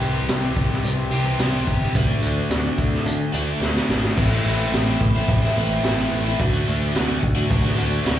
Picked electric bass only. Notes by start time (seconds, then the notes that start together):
0.02 C2
0.29 C2
0.56 C2
0.84 C2
1.11 C2
1.39 C2
1.67 G1
1.95 D2
2.22 D2
2.50 D2
2.78 D2
3.06 D3
3.34 D2
3.60 D2
3.89 G#1
4.17 A1
4.45 A1
4.72 A1
5.01 A1
5.28 A1
5.56 A1
5.83 A1
6.12 A1
6.40 D2
6.68 D2
6.96 D2
7.23 D2
7.50 D2
7.77 D2
8.05 D2